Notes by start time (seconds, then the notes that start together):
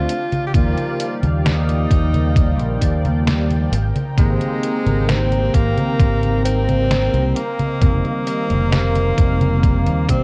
Already playing: F3 A3 C4 D4 F4
0.09 D#3 D5 F5 G5, closed hi-hat
0.32 closed hi-hat, high conga
0.47 G4
0.53 D#2 F3 G3 A#3 F4 D5, kick, closed hi-hat, high conga
0.78 closed hi-hat, high conga
1.00 closed hi-hat
1.23 D#2, closed hi-hat, high conga
1.45 D#4, snare, closed hi-hat, high conga
1.69 closed hi-hat, high conga
1.90 D#2, kick, closed hi-hat
2.14 closed hi-hat, high conga
2.36 kick, closed hi-hat, high conga
2.59 A#1, closed hi-hat, high conga
2.80 D#2 F3 G3 A#3 D5, kick, closed hi-hat
3.05 closed hi-hat, high conga
3.27 snare, closed hi-hat, high conga
3.50 closed hi-hat, high conga
3.72 G#1 C4 A#4 A#5, closed hi-hat
3.96 closed hi-hat, high conga
4.16 G#1 D#3 G#3 A#3 C4 G4, kick, closed hi-hat, high conga
4.41 closed hi-hat, high conga
4.63 closed hi-hat
4.86 G#1, closed hi-hat, high conga
5.09 C4, snare, closed hi-hat, high conga
5.32 closed hi-hat, high conga
5.54 G#1 A#3 A#5, kick, closed hi-hat
5.78 closed hi-hat, high conga
6.00 G#1, kick, closed hi-hat, high conga
6.23 closed hi-hat, high conga
6.44 D#3 G3 A#3 C4, closed hi-hat
6.69 closed hi-hat, high conga
6.91 snare, closed hi-hat, high conga
7.13 C2, closed hi-hat, high conga
7.36 A#3 D#5 F5, closed hi-hat
7.59 closed hi-hat, high conga
7.80 F1 D#3 G3 A#3 C4, kick, closed hi-hat, high conga
8.05 closed hi-hat, high conga
8.27 closed hi-hat
8.50 F1, closed hi-hat, high conga
8.72 snare, closed hi-hat, high conga
8.95 closed hi-hat, high conga
9.18 F1 D5, kick, closed hi-hat
9.41 closed hi-hat, high conga
9.63 kick, closed hi-hat, high conga
9.86 D#2, closed hi-hat, high conga
10.07 D#3 G3 A#3 C4, kick, closed hi-hat, high tom